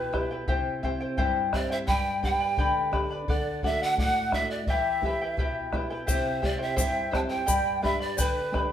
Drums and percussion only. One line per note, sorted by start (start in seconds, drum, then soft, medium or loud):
0.14 bombo rim medium
0.14 bombo low medium
0.48 bombo low medium
0.83 bombo low medium
1.18 bombo low medium
1.53 bombo rim medium
1.53 bombo low medium
1.88 bombo low medium
2.23 bombo low medium
2.58 bombo low medium
2.93 bombo rim medium
2.93 bombo low medium
3.28 bombo low medium
3.62 bombo low medium
3.98 bombo low medium
4.32 bombo rim medium
4.32 bombo low medium
4.67 bombo low medium
5.02 bombo low medium
5.38 bombo low medium
5.73 bombo rim medium
5.73 bombo low medium
6.08 bombo low medium
6.08 shaker medium
6.43 bombo low medium
6.77 bombo low medium
6.77 shaker medium
7.13 bombo rim medium
7.13 bombo low medium
7.48 bombo low medium
7.48 shaker medium
7.84 bombo low medium
8.18 bombo low medium
8.18 shaker medium
8.54 bombo rim medium
8.54 bombo low medium